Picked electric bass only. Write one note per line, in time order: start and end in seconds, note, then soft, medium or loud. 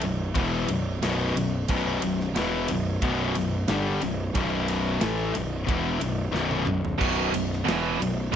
0.01 0.33 B0 medium
0.36 0.67 E1 medium
0.68 0.99 B0 medium
1.03 1.33 B0 medium
1.35 1.66 B0 medium
1.70 2.00 B0 loud
2.02 2.33 B0 medium
2.35 2.66 E1 loud
2.69 3.00 B0 medium
3.02 3.33 B0 loud
3.37 3.67 B0 medium
3.69 4.00 G1 medium
4.03 4.33 B0 medium
4.36 4.98 B0 medium
5.02 5.32 A1 loud
5.35 5.66 B0 medium
5.69 5.99 E1 medium
6.01 6.32 B0 medium
6.34 6.65 B0 medium
6.69 6.99 B0 medium
7.01 7.32 B0 medium
7.34 7.65 B0 medium
7.66 7.98 E1 loud
7.99 8.31 B0 medium